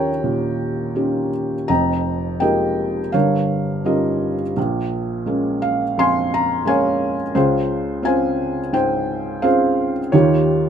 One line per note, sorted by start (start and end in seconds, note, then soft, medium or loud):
0.00 1.66 D#2 medium
0.00 1.66 D#3 medium
0.00 0.95 C#4 soft
0.00 0.96 D#4 soft
0.00 0.96 F4 medium
0.00 0.96 G4 medium
0.00 1.30 A#4 medium
0.00 1.72 C#5 medium
0.00 1.29 G5 medium
0.00 1.68 A#5 medium
0.24 1.66 A#2 medium
0.95 1.54 C#4 soft
0.95 1.55 D#4 soft
0.95 1.55 F4 soft
0.95 1.55 G4 soft
1.68 3.10 F1 medium
1.68 3.10 F2 medium
1.68 2.41 D#5 medium
1.68 2.39 G5 medium
1.68 2.43 A#5 medium
2.40 3.00 G#3 soft
2.40 3.00 A#3 soft
2.40 3.00 D#4 soft
2.40 3.00 F4 soft
2.40 3.00 G4 soft
2.40 3.10 A#4 medium
2.40 3.10 D#5 medium
2.40 3.10 G5 medium
3.12 4.52 G1 medium
3.12 4.52 G2 medium
3.12 3.85 A#4 medium
3.12 4.53 C#5 medium
3.12 3.87 F5 medium
3.85 4.42 G3 soft
3.85 4.42 C#4 soft
3.85 4.43 D#4 soft
3.85 4.42 F4 medium
3.85 4.53 A#4 soft
3.85 4.35 D#5 medium
4.57 7.32 A#1 medium
4.57 7.31 A#2 medium
5.26 5.82 G#3 soft
5.26 5.83 A#3 soft
5.26 5.83 C#4 medium
5.62 5.98 F5 medium
5.98 7.32 F2 medium
5.98 6.67 F5 medium
5.98 6.66 G#5 medium
5.98 6.34 C6 loud
6.34 6.69 A#5 medium
6.65 7.21 G#3 medium
6.65 7.21 A#3 soft
6.65 7.21 C#4 medium
6.65 7.33 F5 medium
6.65 7.15 G#5 medium
6.69 7.33 C#5 medium
7.35 10.09 C#2 medium
7.35 10.09 C#3 medium
7.35 8.02 F4 medium
7.35 8.71 G#4 medium
7.35 8.05 C5 medium
8.03 8.59 C4 medium
8.03 8.59 C#4 soft
8.03 8.59 F4 medium
8.03 8.73 C5 medium
8.03 9.40 F5 medium
8.03 8.76 G#5 medium
8.73 10.08 G#2 medium
8.73 9.43 C5 medium
8.73 9.46 G5 medium
9.42 9.98 C4 medium
9.42 9.99 C#4 soft
9.42 9.99 F4 medium
9.42 10.09 G#4 medium
9.42 10.09 C5 medium
9.42 9.91 F5 medium
10.12 10.69 D#2 medium
10.12 10.69 D#3 medium
10.12 10.69 F4 medium
10.12 10.69 G4 medium
10.12 10.69 C#5 medium